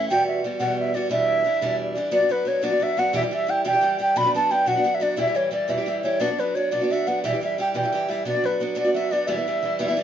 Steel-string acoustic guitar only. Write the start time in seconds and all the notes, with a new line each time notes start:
Already playing: E4
0.10 E2 B2 E3 G3 B3 F#4
0.44 E3 G3 B3 F#4
0.59 E2 B2 E3 G3 B3 F#4
0.94 E3 G3 B3 F#4
1.09 E2 B2 E3 G3 D4 E4
1.44 E3 G3 D4 E4
1.61 E2 B2 E3 G3 D4 E4
1.95 E3 G3 D4 E4
2.11 B2 F#3 B3 D4 F#4
2.21 B3 D4 F#4
2.29 F#3 B3 D4 F#4
2.45 F#3 B3 D4 F#4
2.62 B2 F#3 B3 D4 F#4
2.70 B3 D4 F#4
2.80 F#3 B3 D4 F#4
2.97 F#3 B3 D4 F#4
3.13 E2 B2 E3 G3 E4 G4
3.23 E3 G3 E4
3.31 E3 G3 E4 G4
3.47 E3 G3 E4 G4
3.64 E2 B2 E3 G3 E4 G4
3.73 E3 G3 E4 G4
3.81 E3 G3 E4 G4
3.99 E3 G3 E4 G4
4.16 B2 F#3 B3 D4 F#4
4.24 B3 D4 F#4
4.34 F#3 B3 D4 F#4
4.51 F#3 B3 D4 F#4
4.66 B2 F#3 B3 D4 F#4
4.76 B3 D4 F#4
4.84 F#3 B3 D4 F#4
5.00 F#3 B3 D4 F#4
5.16 E2 B2 E3 G3 E4 G4
5.27 E3 G3 E4 G4
5.35 E3 G3 E4 G4
5.51 E3 G3 E4 G4
5.68 E2 B2 E3 G3 E4 G4
5.78 E3 G3 E4 G4
5.86 E3 G3 E4 G4
6.03 E3 G3 E4 G4
6.20 B2 F#3 B3 D4 F#4
6.29 B3 D4 F#4
6.38 F#3 B3 D4 F#4
6.55 F#3 B3 D4 F#4
6.71 B2 F#3 B3 D4 F#4
6.81 B3 D4 F#4
6.90 F#3 B3 D4 F#4
7.07 F#3 B3 D4 F#4
7.24 E2 B2 E3 G3 E4 G4
7.32 E3 G3 E4 G4
7.41 E3 G3 E4 G4
7.58 E3 G3 E4 G4
7.74 E2 B2 E3 G3 E4 G4
7.83 E3 G3 E4 G4
7.92 E3 G3 E4 G4
8.08 E3 G3 E4 G4
8.25 B2 F#3 B3 D4 F#4
8.34 B3 D4 F#4
8.44 F#3 B3 D4 F#4
8.60 F#3 B3 D4 F#4
8.75 B2 F#3 B3 D4 F#4
8.84 B3 D4 F#4
8.94 F#3 B3 D4 F#4
9.11 F#3 B3 D4 F#4
9.27 E2 B2 E3 G3 B3 E4
9.37 E3 G3 B3 E4
9.47 E3 G3 B3 E4
9.63 E3 G3 B3 E4
9.79 E2 B2 E3 G3 B3 E4
9.88 E3 G3 B3 E4
9.97 E3 G3 B3 E4